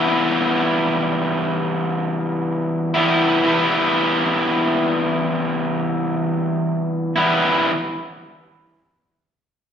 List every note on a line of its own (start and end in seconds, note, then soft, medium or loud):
0.00 2.97 E3 loud
0.00 2.96 G3 loud
0.00 2.95 B3 loud
0.00 2.94 E4 medium
2.94 3.43 E3 medium
2.94 3.45 G3 medium
2.94 3.46 B3 medium
2.94 3.47 E4 loud
3.44 7.12 E3 loud
3.44 7.13 G3 medium
3.44 7.13 B3 loud
3.44 7.14 E4 loud
7.16 7.72 E3 medium
7.16 7.71 G3 medium
7.16 7.71 B3 medium
7.16 7.70 E4 medium